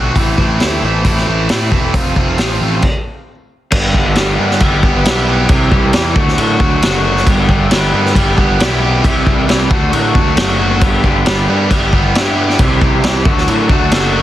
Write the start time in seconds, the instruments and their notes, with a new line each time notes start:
Already playing: picked electric bass B1, overdriven electric guitar D3 A3 C4 F#4, tonewheel organ A4 D5 F#5 C6
0.16 picked electric bass A1, overdriven electric guitar A2 E3 A3 C4 E4, tonewheel organ E5 G5, kick, open hi-hat
0.38 picked electric bass A1, overdriven electric guitar A2 E3 A3 C4 E4, kick
0.60 picked electric bass D2, overdriven electric guitar A2 E3 A3 C4 E4, snare, open hi-hat
0.83 picked electric bass A1, overdriven electric guitar A2 E3 A3 C4 E4
1.05 picked electric bass A1, overdriven electric guitar A2 E3 A3 C4 E4, kick, open hi-hat
1.17 snare
1.26 picked electric bass A1, overdriven electric guitar A2 E3 A3 C4 E4
1.49 overdriven electric guitar A2 E3 A3 C4 E4, picked electric bass A2, snare, open hi-hat
1.72 picked electric bass E1, overdriven electric guitar A2 E3 A3 C4 E4, kick
1.94 picked electric bass F1, overdriven electric guitar F2 C3 F3 A3 C4 F4, tonewheel organ F5, kick, open hi-hat
2.16 picked electric bass F1, overdriven electric guitar F2 C3 F3 A3 C4 F4, kick
2.38 picked electric bass A1, overdriven electric guitar F2 C3 F3 A3 C4 F4, snare, open hi-hat
2.61 picked electric bass A1, overdriven electric guitar F2 C3 F3 A3 C4 F4
2.82 kick, crash
3.71 picked electric bass G1, overdriven electric guitar G2 D3 G3 B3 D4 G4, kick, crash
3.94 picked electric bass G1, overdriven electric guitar D3 G3 B3 D4 G4, kick
4.16 picked electric bass G1, overdriven electric guitar G3 B3 D4 G4, snare, crash
4.38 picked electric bass G2, overdriven electric guitar G2 D3 G3 B3 D4 G4
4.51 snare
4.60 picked electric bass G1, overdriven electric guitar G3 B3 E4 G4, kick, crash
4.83 picked electric bass G1, overdriven electric guitar B3 E4 G4, kick
5.05 picked electric bass B1, overdriven electric guitar G3 B3 E4 G4, snare, crash
5.27 overdriven electric guitar B3 E4 G4
5.49 picked electric bass C2, overdriven electric guitar C3 E3 G3 E4 G4, kick, crash
5.71 picked electric bass C2, overdriven electric guitar E3 G3 E4 G4, kick
5.93 picked electric bass E2, overdriven electric guitar E3 G3 E4 G4, snare, crash
6.15 picked electric bass D2, overdriven electric guitar D3 F#3 A3 D4 F#4, kick
6.28 snare
6.37 picked electric bass A2, overdriven electric guitar F#3 A3 D4 F#4, crash
6.59 picked electric bass D2, overdriven electric guitar A3 D4 F#4, kick
6.81 picked electric bass F#1, overdriven electric guitar D3 F#3 A3 D4 F#4, snare, crash
7.03 overdriven electric guitar A3 D4 F#4
7.17 snare
7.25 picked electric bass G1, overdriven electric guitar G2 D3 G3 B3 D4 G4, kick, crash
7.48 picked electric bass G1, overdriven electric guitar D3 G3 B3 D4 G4, kick
7.70 picked electric bass G1, overdriven electric guitar G3 B3 D4 G4, snare, crash
7.92 picked electric bass G2, overdriven electric guitar G2 D3 G3 B3 D4 G4
8.06 snare
8.15 picked electric bass G1, overdriven electric guitar G3 B3 E4 G4, kick, crash
8.37 picked electric bass G1, overdriven electric guitar B3 E4 G4, kick
8.59 picked electric bass B1, overdriven electric guitar G3 B3 E4 G4, snare, crash
8.81 overdriven electric guitar B3 E4 G4
9.04 picked electric bass C2, overdriven electric guitar C3 E3 G3 E4 G4, kick, crash
9.26 picked electric bass C2, overdriven electric guitar E3 G3 E4 G4, kick
9.47 picked electric bass C2, overdriven electric guitar E3 G3 E4 G4, snare, crash
9.69 picked electric bass D2, overdriven electric guitar D3 F#3 A3 D4 F#4, kick
9.91 picked electric bass A2, overdriven electric guitar F#3 A3 D4 F#4, crash
10.13 picked electric bass D2, overdriven electric guitar A3 D4 F#4, kick
10.36 picked electric bass F#1, overdriven electric guitar D3 F#3 A3 D4 F#4, snare, crash
10.59 overdriven electric guitar A3 D4 F#4
10.80 picked electric bass G1, overdriven electric guitar G2 D3 G3 B3 D4 G4, tonewheel organ G4 B4 D5 B5, kick, crash
11.03 picked electric bass G1, overdriven electric guitar D3 G3 B3 D4 G4, kick
11.26 picked electric bass G1, overdriven electric guitar G3 B3 D4 G4, snare, crash
11.48 picked electric bass G2, overdriven electric guitar G2 D3 G3 B3 D4 G4
11.70 picked electric bass G1, overdriven electric guitar G3 B3 E4 G4, tonewheel organ G4 B4 E5, kick, crash
11.93 picked electric bass G1, overdriven electric guitar B3 E4 G4, kick
12.15 picked electric bass G2, overdriven electric guitar G3 B3 E4 G4, snare, crash
12.37 overdriven electric guitar B3 E4 G4
12.50 snare
12.59 picked electric bass C2, overdriven electric guitar C3 E3 G3 E4 G4, tonewheel organ G4 C5 C6, kick, crash
12.81 picked electric bass C2, overdriven electric guitar E3 G3 E4 G4, kick
13.03 picked electric bass C2, overdriven electric guitar E3 G3 E4 G4, snare, crash
13.25 picked electric bass D2, overdriven electric guitar D3 F#3 A3 D4 F#4, tonewheel organ F#4 A4 D5 A5, kick
13.38 snare
13.47 picked electric bass A2, overdriven electric guitar F#3 A3 D4 F#4, crash
13.69 picked electric bass D2, overdriven electric guitar A3 D4 F#4, kick
13.92 picked electric bass F#1, overdriven electric guitar D3 F#3 A3 D4 F#4, snare, crash
14.13 overdriven electric guitar A3 D4 F#4